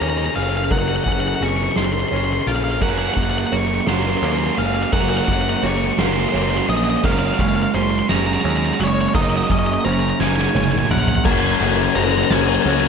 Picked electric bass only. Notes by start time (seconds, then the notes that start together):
0.01 D#2
0.37 F#1
0.71 F#1
1.07 F#1
1.41 F#1
1.77 F#1
2.12 F#1
2.47 A#1
2.82 F#1
3.17 F#1
3.52 F#1
3.88 F#1
4.22 D#2
4.58 F#1
4.93 F#1
5.28 F#1
5.63 F#1
5.99 F#1
6.34 F#1
6.69 A#1
7.04 F#1
7.39 F#1
7.74 F#1
8.10 F#1
8.45 D#2
8.80 F#1
9.15 F#1
9.50 F#1
9.85 F#1
10.20 F#1
10.55 F#1
10.91 A#1
11.26 F#1
11.61 F#1
11.96 F#1
12.30 F#1
12.65 C#2